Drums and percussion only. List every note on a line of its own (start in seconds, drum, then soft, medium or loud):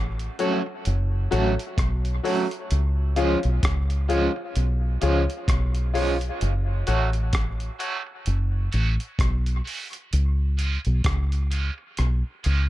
0.19 closed hi-hat soft
0.39 closed hi-hat medium
0.85 closed hi-hat medium
1.32 closed hi-hat medium
1.59 closed hi-hat medium
1.78 kick loud
1.78 cross-stick medium
1.78 closed hi-hat medium
2.05 closed hi-hat soft
2.25 open hi-hat medium
2.51 closed hi-hat medium
2.71 closed hi-hat medium
3.16 closed hi-hat medium
3.43 closed hi-hat soft
3.63 kick loud
3.63 cross-stick loud
3.63 closed hi-hat medium
3.90 closed hi-hat medium
4.10 closed hi-hat medium
4.56 closed hi-hat medium
5.02 closed hi-hat medium
5.30 closed hi-hat soft
5.48 kick medium
5.48 cross-stick medium
5.48 closed hi-hat loud
5.75 closed hi-hat medium
5.95 open hi-hat medium
6.21 closed hi-hat medium
6.41 closed hi-hat medium
6.87 closed hi-hat medium
7.13 closed hi-hat soft
7.33 kick loud
7.33 cross-stick loud
7.33 closed hi-hat medium
7.60 closed hi-hat soft
7.80 closed hi-hat medium
8.26 closed hi-hat medium
8.72 closed hi-hat medium
9.00 closed hi-hat soft
9.19 kick loud
9.19 cross-stick medium
9.19 closed hi-hat medium
9.46 closed hi-hat soft
9.67 open hi-hat medium
9.93 closed hi-hat medium
10.13 closed hi-hat medium
10.59 closed hi-hat medium
10.85 closed hi-hat soft
11.04 kick loud
11.04 cross-stick loud
11.04 closed hi-hat medium
11.32 closed hi-hat soft
11.52 closed hi-hat medium
11.97 cross-stick medium
11.97 closed hi-hat medium
12.44 closed hi-hat medium